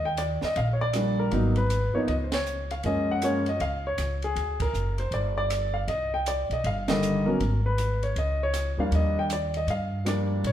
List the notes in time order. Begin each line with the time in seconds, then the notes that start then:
Already playing: D#2
0.05 G5
0.17 D5, hi-hat pedal, ride
0.41 D#5, muted upright bass stroke, snare
0.56 A#1 F5, ride
0.73 C#5
0.81 D5
0.93 F3 G3 A#3 D4, cross-stick, hi-hat pedal, ride
1.19 A#4
1.31 G#1 F#3 A#3 B3 D#4, ride
1.56 B4, ride
1.70 hi-hat pedal, ride
1.94 F3 A#3 B3 D#4 C#5, muted upright bass stroke
2.08 C#2 D#5, ride
2.24 C5
2.32 C#5, snare, ride
2.46 hi-hat pedal
2.71 F5, ride
2.83 F#2 F3 G#3 A#3 C#4 D#5, ride
3.11 F#5
3.22 F3 G#3 A#3 C#4 C#5, hi-hat pedal, ride
3.46 D#5, ride
3.60 C#2 F5, ride
3.87 C#5
3.98 C#2, cross-stick, hi-hat pedal, ride
4.22 G#4, ride
4.36 D2, ride
4.60 A#4, kick, ride
4.73 F#1, hi-hat pedal
4.98 C5, ride
5.11 G1 D5, ride
5.38 D5
5.50 cross-stick, hi-hat pedal, ride
5.74 F5
5.88 C2 D#5, ride
6.14 G5
6.26 D5, hi-hat pedal, ride
6.50 B1 D#5, ride
6.64 G1 F5, ride
6.88 D3 D#3 G3 A#3 D#5, snare, ride
7.02 hi-hat pedal
7.26 F#3 A#3 B3 C#4 A#4
7.40 G#1, ride
7.66 B4
7.78 hi-hat pedal, ride
8.03 C#5, ride
8.16 C#2 D#5, ride
8.43 C#5
8.54 cross-stick, hi-hat pedal, ride
8.77 D2 F3 G3 A#3 D4 F5
8.91 D#2 D#5, ride
9.19 G5
9.30 D5, hi-hat pedal, ride
9.54 D#5, ride
9.67 G2 F5, ride
10.05 F3 G3 A#3 D4 D5, cross-stick, hi-hat pedal, ride
10.44 A#1 C#5, ride